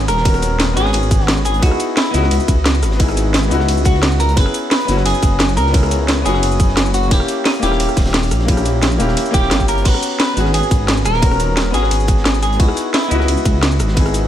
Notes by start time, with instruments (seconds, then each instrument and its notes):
Already playing: grand piano B3 C#4 F#4 G#4 A#5
0.08 detuned saw bass D#1, clean electric guitar A#4, cross-stick, closed hi-hat, cabasa
0.17 snare
0.22 grand piano B3 C#4, kick, closed hi-hat, ride
0.26 grand piano F#4 A#4
0.34 cross-stick, closed hi-hat
0.42 closed hi-hat, cabasa
0.59 snare, closed hi-hat, ride
0.74 detuned saw bass G#1, grand piano B3 C#4, clean electric guitar G#4, closed hi-hat, cabasa
0.78 grand piano F#4 G#4
0.85 cross-stick, snare
0.93 detuned saw bass G#1, closed hi-hat, ride
1.03 cabasa
1.11 kick, closed hi-hat, cabasa
1.20 snare
1.26 detuned saw bass G#1, clean electric guitar F#4, snare, closed hi-hat, ride
1.37 cabasa
1.45 clean electric guitar G#4, closed hi-hat, cabasa
1.54 closed hi-hat
1.59 detuned saw bass C#2, grand piano B3 D#4, clean electric guitar F#4, kick, closed hi-hat, ride
1.64 grand piano E4 G#4
1.71 cross-stick
1.80 closed hi-hat, cabasa
1.97 clean electric guitar E4, snare, closed hi-hat, open hi-hat, ride
2.05 closed hi-hat
2.11 detuned saw bass C#2, grand piano B3 D#5, clean electric guitar E4, snare, closed hi-hat, cabasa
2.15 grand piano E4 F#4
2.23 cross-stick, snare
2.31 detuned saw bass C#2, closed hi-hat, ride
2.40 cabasa
2.48 detuned saw bass C#2, kick, closed hi-hat, cabasa
2.66 snare, closed hi-hat, ride
2.74 cabasa
2.83 detuned saw bass G#1, cross-stick, closed hi-hat, cabasa
2.91 snare
2.96 grand piano B3 D#4, kick, closed hi-hat, ride
3.01 grand piano E4 G#4
3.08 cross-stick, closed hi-hat
3.17 closed hi-hat, cabasa
3.33 snare, closed hi-hat, ride
3.43 cabasa
3.48 detuned saw bass C#2, grand piano B3 D#4, closed hi-hat, cabasa
3.52 grand piano E4 F#4
3.60 cross-stick, snare
3.68 detuned saw bass C#2, closed hi-hat, ride
3.77 cabasa
3.85 clean electric guitar F#4, kick, closed hi-hat, cabasa
3.94 snare
4.02 detuned saw bass C#2, snare, closed hi-hat, ride
4.12 cabasa
4.20 clean electric guitar A#4, closed hi-hat, cabasa
4.29 closed hi-hat
4.34 detuned saw bass F#1, grand piano B3 C#4, clean electric guitar B4, kick, closed hi-hat, ride
4.38 grand piano E4 G#4
4.46 cross-stick
4.54 closed hi-hat, cabasa
4.71 clean electric guitar B4, snare, closed hi-hat, open hi-hat, ride
4.80 closed hi-hat
4.85 detuned saw bass F#1, grand piano B3 C#4, snare, closed hi-hat, cabasa
4.89 grand piano E4 F#4, closed hi-hat
4.97 cross-stick, snare
5.06 detuned saw bass F#1, clean electric guitar G#4, closed hi-hat, ride
5.14 cabasa
5.22 detuned saw bass F#1, kick, closed hi-hat, cabasa
5.39 snare, closed hi-hat, ride
5.49 cabasa
5.57 detuned saw bass C#2, clean electric guitar A#4, cross-stick, closed hi-hat, cabasa
5.66 snare
5.71 grand piano B3 C#4, kick, closed hi-hat, ride
5.75 grand piano E4 G#4
5.83 cross-stick, closed hi-hat
5.91 closed hi-hat, cabasa
6.08 snare, closed hi-hat, ride
6.22 detuned saw bass F#1, grand piano B3 C#4, clean electric guitar G#4, closed hi-hat, cabasa
6.26 grand piano E4 F#4, closed hi-hat
6.34 cross-stick, snare
6.43 detuned saw bass F#1, closed hi-hat, ride
6.51 cabasa
6.60 kick, closed hi-hat, cabasa
6.68 snare
6.77 detuned saw bass F#1, snare, closed hi-hat, ride
6.86 cabasa
6.94 clean electric guitar F#4, closed hi-hat, cabasa
7.03 closed hi-hat
7.08 detuned saw bass D#1, grand piano A#3 C#4, clean electric guitar G4, kick, closed hi-hat, ride
7.12 grand piano E4 G4
7.20 cross-stick
7.28 closed hi-hat, cabasa
7.45 clean electric guitar D#4, snare, closed hi-hat, open hi-hat, ride
7.54 closed hi-hat
7.59 detuned saw bass D#1, grand piano A#3 C#4, clean electric guitar G4, snare, closed hi-hat, cabasa
7.63 grand piano E4 G4, closed hi-hat
7.71 cross-stick, snare
7.80 detuned saw bass D#1, closed hi-hat, ride
7.89 cross-stick, cabasa
7.97 detuned saw bass D#1, kick, snare, closed hi-hat, open hi-hat, cabasa
8.05 snare, open hi-hat
8.14 snare, closed hi-hat, open hi-hat, ride
8.23 cabasa
8.31 detuned saw bass A#1, cross-stick, closed hi-hat, cabasa
8.39 snare
8.45 grand piano A#3 C#4, kick, closed hi-hat, ride
8.50 grand piano E4 G4
8.57 cross-stick, closed hi-hat, cabasa
8.65 closed hi-hat, cabasa
8.82 snare, closed hi-hat, ride
8.91 cabasa
8.98 detuned saw bass D#1, grand piano A#3 C#4 E4 G4, closed hi-hat, cabasa
9.08 cross-stick, snare
9.17 closed hi-hat, ride
9.26 cabasa
9.31 detuned saw bass D#1, grand piano A#3 C#4, clean electric guitar G4, kick, closed hi-hat, cabasa
9.35 grand piano E4 G4
9.42 snare
9.50 detuned saw bass G1, snare, closed hi-hat, ride
9.60 kick, cabasa
9.68 detuned saw bass G1, clean electric guitar A#4, closed hi-hat, cabasa
9.77 closed hi-hat
9.82 detuned saw bass G#1, grand piano B3 C#4, clean electric guitar B4, kick, closed hi-hat, ride, crash
9.87 grand piano F#4 A#5
9.94 cross-stick
10.02 closed hi-hat, cabasa
10.20 clean electric guitar B4, snare, closed hi-hat, open hi-hat, ride
10.29 closed hi-hat
10.34 detuned saw bass G#1, grand piano B3 C#4, closed hi-hat, cabasa
10.38 grand piano F#4 G#4
10.46 cross-stick, snare
10.54 detuned saw bass G#1, clean electric guitar G#4, closed hi-hat, ride
10.63 cabasa
10.71 detuned saw bass G#1, kick, closed hi-hat, cabasa
10.88 snare, closed hi-hat, ride
10.97 cabasa
11.05 detuned saw bass D#1, clean electric guitar A#4, cross-stick, closed hi-hat, cabasa
11.14 snare
11.19 grand piano B3 C#4, kick, closed hi-hat, ride
11.24 grand piano F#4 A#4
11.31 cross-stick, closed hi-hat
11.40 closed hi-hat, cabasa
11.57 snare, closed hi-hat, ride
11.71 detuned saw bass G#1, grand piano B3 C#4, clean electric guitar G#4, snare, closed hi-hat, cabasa
11.75 grand piano F#4 G#4
11.83 cross-stick, snare
11.91 detuned saw bass G#1, closed hi-hat, ride
12.00 cabasa
12.08 kick, closed hi-hat, cabasa
12.17 snare
12.25 detuned saw bass G#1, snare, closed hi-hat, ride
12.34 cabasa
12.43 clean electric guitar G#4, closed hi-hat, cabasa
12.53 closed hi-hat
12.57 detuned saw bass C#2, grand piano B3 D#4, clean electric guitar F#4, kick, closed hi-hat, ride
12.61 grand piano E4 G#4
12.68 cross-stick
12.77 closed hi-hat, cabasa
12.94 clean electric guitar E4, snare, closed hi-hat, open hi-hat, ride
13.03 closed hi-hat
13.08 detuned saw bass C#2, grand piano B3 D#5, clean electric guitar E4, closed hi-hat, cabasa
13.12 grand piano E4 F#4
13.20 cross-stick, snare
13.28 detuned saw bass C#2, closed hi-hat, ride
13.37 cabasa
13.45 detuned saw bass C#2, kick, closed hi-hat, cabasa
13.63 snare, closed hi-hat, ride
13.71 cabasa
13.79 detuned saw bass G#1, cross-stick, closed hi-hat, cabasa
13.88 snare
13.94 grand piano B3 D#4, kick, closed hi-hat, ride
13.98 grand piano E4 G#4
14.05 cross-stick, closed hi-hat
14.14 closed hi-hat, cabasa